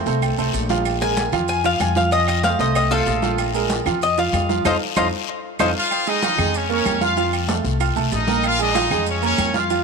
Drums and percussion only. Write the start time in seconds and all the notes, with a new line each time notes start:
0.06 high conga, short guiro, maracas
0.22 high conga, low agogo, long guiro, claves, maracas
0.38 high conga, maracas
0.53 high conga, low agogo, short guiro, maracas
0.69 high conga, low agogo, short guiro, maracas
0.85 high conga, low agogo, long guiro, claves, maracas
1.01 high conga, maracas
1.17 high conga, low agogo, short guiro, maracas
1.32 high conga, low conga, low agogo, short guiro, claves, maracas
1.48 high conga, long guiro, maracas
1.64 high conga, low agogo, maracas
1.80 high conga, low agogo, short guiro, claves, maracas
1.95 high conga, short guiro, maracas
2.11 low agogo, long guiro, maracas
2.28 high conga, low agogo, claves, maracas
2.43 high conga, low agogo, short guiro, maracas
2.59 high conga, short guiro, maracas
2.75 high conga, low agogo, long guiro, claves, maracas
2.91 high conga, maracas
3.07 high conga, low timbale, low agogo, short guiro, maracas
3.22 high conga, low agogo, short guiro, maracas
3.38 high conga, low agogo, long guiro, claves, maracas
3.54 high conga, maracas
3.70 high conga, low agogo, short guiro, maracas
3.86 high conga, low conga, low agogo, short guiro, claves, maracas
4.01 high conga, long guiro, maracas
4.17 high conga, low agogo, maracas
4.33 high conga, low timbale, low agogo, short guiro, claves, maracas
4.49 high conga, short guiro, maracas
4.65 high conga, high timbale, long guiro, claves, maracas
4.96 high conga, high timbale, long guiro, claves, maracas
5.59 high conga, high timbale, long guiro, claves, maracas
5.91 high conga, low agogo, claves, maracas
6.07 high conga, maracas
6.22 high conga, low agogo, short guiro, maracas
6.38 high conga, low conga, low agogo, short guiro, claves, maracas
6.54 high conga, long guiro, maracas
6.70 high conga, low agogo
6.86 high conga, low timbale, low agogo, short guiro, claves, maracas
7.01 high conga, short guiro, maracas
7.17 high conga, low agogo, long guiro, maracas
7.33 high conga, low agogo, claves, maracas
7.49 high conga, low agogo, short guiro, maracas
7.65 high conga, short guiro, maracas
7.80 high conga, low agogo, long guiro, claves, maracas
7.96 high conga, maracas
8.12 high conga, low timbale, low agogo, short guiro, maracas
8.28 high conga, low agogo, short guiro, maracas
8.43 high conga, low agogo, long guiro, claves, maracas
8.59 high conga, maracas
8.75 high conga, low agogo, short guiro, maracas
8.91 high conga, low conga, low agogo, short guiro, claves, maracas
9.06 high conga, long guiro, maracas
9.23 high conga, low agogo, maracas
9.38 high conga, low agogo, short guiro, claves, maracas
9.54 high conga, short guiro, maracas
9.70 high conga, low agogo, long guiro, maracas